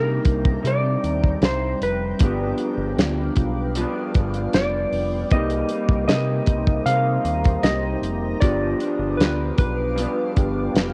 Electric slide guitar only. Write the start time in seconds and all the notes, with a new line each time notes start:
Already playing: A#4
0.67 D5
1.45 C5
1.83 B4
4.54 D5
5.32 D#5
6.08 D#5
6.86 F5
7.63 D#5
8.41 D5
9.17 B4
9.59 B4